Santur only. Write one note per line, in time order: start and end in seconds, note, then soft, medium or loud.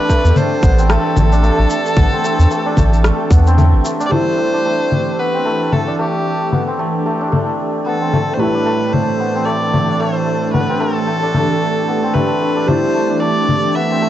0.00 0.69 C4 medium
0.00 1.32 D4 medium
0.09 0.89 A3 loud
0.63 0.84 B3 medium
0.78 2.03 C4 medium
0.89 1.16 A3 loud
1.17 1.43 A3 medium
1.32 2.66 D4 medium
1.43 2.24 A3 loud
1.97 2.18 B3 medium
2.12 3.37 C4 medium
2.24 2.50 A3 loud
2.51 2.77 A3 medium
2.66 4.00 D4 medium
2.77 3.57 A3 loud
3.31 3.53 B3 medium
3.47 5.25 C4 medium
3.58 3.84 A3 loud
3.85 4.11 A3 medium
4.00 4.53 D4 medium
4.11 4.38 A3 medium
4.38 4.65 A3 medium
4.54 5.87 D4 medium
4.65 5.45 A3 medium
5.19 5.40 B3 medium
5.34 6.58 C4 medium
5.45 5.72 A3 medium
5.72 5.99 A3 medium
5.87 7.20 D4 medium
5.99 6.79 A3 medium
6.52 6.73 B3 medium
6.67 7.92 C4 medium
6.79 7.05 A3 medium
7.06 7.32 A3 medium
7.21 8.54 D4 medium
7.32 8.12 A3 medium
7.86 8.07 B3 medium
8.01 9.26 C4 medium
8.13 8.39 A3 medium
8.39 8.65 A3 medium
8.54 9.88 D4 medium
8.66 9.46 A3 medium
9.20 9.41 B3 medium
9.35 10.60 C4 medium
9.46 9.73 A3 medium
9.73 10.00 A3 medium
9.88 11.22 D4 medium
10.00 10.80 A3 medium
10.54 10.75 B3 medium
10.69 11.94 C4 medium
10.80 11.07 A3 medium
11.07 11.34 A3 medium
11.23 12.56 D4 medium
11.35 12.14 A3 medium
11.88 12.09 B3 medium
12.03 13.81 C4 medium
12.14 12.41 A3 medium
12.41 12.67 A3 medium
12.56 13.10 D4 medium
12.68 12.94 A3 medium
12.95 13.21 A3 medium
13.10 14.09 D4 medium
13.22 14.02 A3 medium
13.75 13.97 B3 medium
13.91 14.09 C4 medium
14.02 14.09 A3 medium